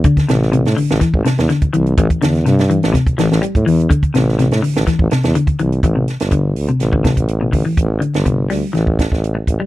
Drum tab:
HH |xxx-xxoxx-xxxxxx|xxxxxxxxxxxxxxox|xxx-xxoxx-xxxxxx|x-xxx-oxx-xxx-o-|
SD |-ooo-o-oo-ooo---|--oooo-oo-oo----|--oooo-oo-oo----|--oo----o-o-----|
BD |oo------oo---o--|oo------oo---o--|oo------oo---o--|o---o----ooo--o-|

HH |x-xxx-o-x-x-x-x-|
SD |---o--o-o-oo----|
BD |o---o----ooo--o-|